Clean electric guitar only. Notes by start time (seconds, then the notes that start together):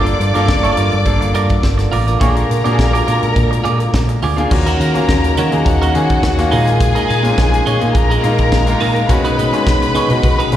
0.06 muted clean electric guitar stroke
0.20 muted clean electric guitar stroke
0.34 F4 A#4 D5
0.63 F4 A#4 D5
0.77 F4 A#4 D5
0.93 muted clean electric guitar stroke
1.21 muted clean electric guitar stroke
1.34 F4 A#4 D5
1.50 muted clean electric guitar stroke
1.63 muted clean electric guitar stroke
1.78 muted clean electric guitar stroke
1.92 F4 A#4 D5
2.07 F4 A#4 D5
2.20 F4 G#4 D5
2.36 muted clean electric guitar stroke
2.49 muted clean electric guitar stroke
2.64 F4 G#4 D5
2.78 muted clean electric guitar stroke
2.93 F4 G#4 D5
3.06 F4 G#4 D5
3.22 muted clean electric guitar stroke
3.51 muted clean electric guitar stroke
3.64 F4 G#4 D5
3.80 muted clean electric guitar stroke
3.93 muted clean electric guitar stroke
4.09 muted clean electric guitar stroke
4.23 F4 G#4 D5
4.38 F4 G#4 D5
4.51 muted clean electric guitar stroke
4.66 C#4 F#4 A#4
4.80 C#4 F#4 A#4
4.95 muted clean electric guitar stroke
5.24 muted clean electric guitar stroke
5.38 C#4 F#4 C#5
5.54 muted clean electric guitar stroke
5.67 muted clean electric guitar stroke
5.82 C#4 F#4 A#4
5.96 muted clean electric guitar stroke
6.10 muted clean electric guitar stroke
6.39 muted clean electric guitar stroke
6.52 D#4 G#4 A#4
6.67 muted clean electric guitar stroke
6.80 muted clean electric guitar stroke
6.95 D#4 G#4 A#4
7.09 D#4 G#4 A#4
7.24 muted clean electric guitar stroke
7.52 muted clean electric guitar stroke
7.66 D#4 G#4 C#5
7.82 muted clean electric guitar stroke
7.95 muted clean electric guitar stroke
8.10 D#4 G#4 A#4
8.23 muted clean electric guitar stroke
8.39 muted clean electric guitar stroke
8.68 muted clean electric guitar stroke
8.81 D#4 G#4 A#4
8.95 muted clean electric guitar stroke
9.09 muted clean electric guitar stroke
9.25 D#4 G#4 B4
9.38 D#4 G#4 B4
9.53 muted clean electric guitar stroke
9.82 muted clean electric guitar stroke
9.95 D#4 G#4 C#5
10.10 muted clean electric guitar stroke
10.24 muted clean electric guitar stroke
10.39 D#4 G#4 B4
10.52 muted clean electric guitar stroke